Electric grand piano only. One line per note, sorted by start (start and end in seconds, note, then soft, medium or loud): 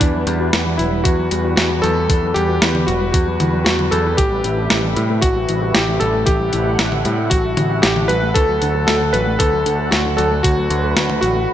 0.00 0.49 D4 medium
0.78 1.03 E4 medium
1.04 1.53 F#4 medium
1.56 1.81 F#4 medium
1.82 2.25 A4 loud
2.27 2.35 A4 medium
2.34 2.83 G4 loud
2.87 3.11 F#4 medium
3.12 3.62 F#4 medium
3.65 3.92 F#4 medium
3.91 4.19 A4 loud
4.17 5.18 G4 loud
5.21 5.76 F#4 loud
5.74 6.01 G4 medium
6.00 6.27 A4 loud
6.26 7.34 G4 loud
7.30 7.84 F#4 loud
7.82 8.07 G4 loud
8.08 8.36 B4 loud
8.34 8.85 A4 loud
8.87 9.14 A4 loud
9.13 9.40 B4 loud
9.39 9.93 A4 loud
9.91 10.18 F#4 loud
10.17 10.42 A4 loud
10.43 11.18 F#4 loud
11.21 11.46 F#4 loud